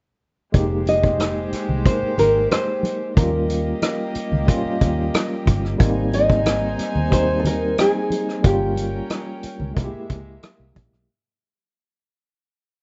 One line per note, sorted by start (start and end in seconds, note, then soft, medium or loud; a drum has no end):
0.52 1.49 F1 medium
0.52 1.38 G#3 medium
0.52 3.13 G#3 medium
0.52 1.39 A#3 medium
0.52 1.40 D#4 medium
0.52 3.13 G4 medium
0.52 1.40 G4 medium
0.52 3.13 C5 medium
0.52 kick medium
0.52 closed hi-hat medium
0.52 muted conga soft
0.86 1.49 D#5 medium
0.86 closed hi-hat medium
0.86 muted conga soft
1.04 kick medium
1.20 cross-stick medium
1.20 closed hi-hat medium
1.20 high conga medium
1.53 muted fingered electric bass stroke soft
1.53 cross-stick soft
1.53 closed hi-hat medium
1.69 1.83 C2 medium
1.69 low conga medium
1.84 2.70 G#3 medium
1.84 2.71 A#3 soft
1.84 2.71 D#4 soft
1.84 2.72 A#4 medium
1.84 2.19 C5 medium
1.84 kick medium
1.84 closed hi-hat medium
1.84 muted conga soft
2.03 muted fingered electric bass stroke soft
2.18 2.46 G#1 medium
2.18 2.51 A#4 medium
2.18 closed hi-hat medium
2.18 muted conga soft
2.18 low conga medium
2.51 3.17 C5 medium
2.51 cross-stick loud
2.51 closed hi-hat medium
2.51 high conga medium
2.83 closed hi-hat medium
2.83 high conga medium
3.15 3.72 D#2 loud
3.15 3.23 F3 medium
3.15 5.76 A#3 medium
3.15 4.02 A#3 medium
3.15 4.03 C#4 medium
3.15 4.03 F4 medium
3.15 5.76 G4 medium
3.15 5.11 A#4 medium
3.15 5.76 D#5 medium
3.15 kick loud
3.15 closed hi-hat medium
3.15 muted conga soft
3.22 4.05 G3 medium
3.49 closed hi-hat medium
3.49 muted conga soft
3.82 cross-stick loud
3.82 closed hi-hat medium
3.82 high conga medium
4.15 muted fingered electric bass stroke soft
4.15 closed hi-hat medium
4.32 4.46 C#2 medium
4.32 low conga medium
4.46 5.33 G3 medium
4.46 5.33 A#3 medium
4.46 5.34 C#4 medium
4.46 5.35 F4 medium
4.46 kick medium
4.46 closed hi-hat medium
4.46 muted conga soft
4.65 muted fingered electric bass stroke soft
4.81 5.09 D#2 medium
4.81 kick medium
4.81 closed hi-hat medium
4.81 muted conga soft
5.14 cross-stick loud
5.14 closed hi-hat medium
5.14 high conga medium
5.46 5.75 G1 medium
5.46 kick medium
5.46 closed hi-hat medium
5.46 high conga medium
5.65 cross-stick soft
5.78 6.75 G#1 loud
5.78 6.65 G3 medium
5.78 6.65 A#3 medium
5.78 6.66 C4 medium
5.78 8.40 D#4 medium
5.78 6.67 D#4 medium
5.78 8.40 C5 medium
5.78 8.40 G#5 medium
5.78 kick loud
5.78 closed hi-hat medium
6.12 6.76 D#5 medium
6.12 closed hi-hat medium
6.12 muted conga soft
6.30 kick medium
6.46 cross-stick medium
6.46 closed hi-hat medium
6.46 high conga medium
6.79 muted fingered electric bass stroke soft
6.79 cross-stick soft
6.79 closed hi-hat medium
6.96 7.74 D#2 medium
6.96 low conga medium
7.10 7.97 G3 medium
7.10 7.98 A#3 medium
7.10 7.98 C4 medium
7.10 7.99 D#4 medium
7.10 7.40 C5 medium
7.10 kick medium
7.10 closed hi-hat medium
7.10 muted conga soft
7.40 7.46 A4 medium
7.45 7.80 A#4 medium
7.45 closed hi-hat medium
7.45 muted conga medium
7.45 low conga medium
7.78 8.45 G#4 medium
7.78 cross-stick loud
7.78 closed hi-hat loud
7.78 high conga medium
8.10 closed hi-hat medium
8.10 high conga medium
8.29 cross-stick soft
8.43 9.00 G1 medium
8.43 9.29 G3 medium
8.43 9.30 A#3 medium
8.43 9.74 C#4 medium
8.43 9.31 C#4 medium
8.43 9.31 F4 medium
8.43 10.40 G4 medium
8.43 9.74 A#4 medium
8.43 9.74 G5 medium
8.43 kick loud
8.43 closed hi-hat medium
8.76 closed hi-hat medium
8.76 muted conga soft
9.10 cross-stick medium
9.10 closed hi-hat medium
9.10 high conga medium
9.43 muted fingered electric bass stroke soft
9.43 closed hi-hat medium
9.60 9.74 C#2 medium
9.60 low conga medium
9.75 9.90 C2 medium
9.75 10.62 G#3 medium
9.75 11.06 G#3 medium
9.75 10.62 A#3 medium
9.75 11.07 A#3 medium
9.75 10.63 E4 medium
9.75 9.84 F4 medium
9.75 11.06 E5 medium
9.75 kick medium
9.75 closed hi-hat medium
9.75 muted conga soft
9.84 10.67 G4 medium
9.94 muted fingered electric bass stroke soft
10.10 10.38 C#2 medium
10.10 kick medium
10.10 closed hi-hat medium
10.10 muted conga medium
10.43 cross-stick loud
10.43 closed hi-hat medium
10.43 high conga medium
10.60 10.73 C2 medium
10.75 10.90 A#1 medium
10.75 kick medium
10.75 closed hi-hat medium
10.75 high conga medium
10.93 11.06 B1 medium
10.93 cross-stick soft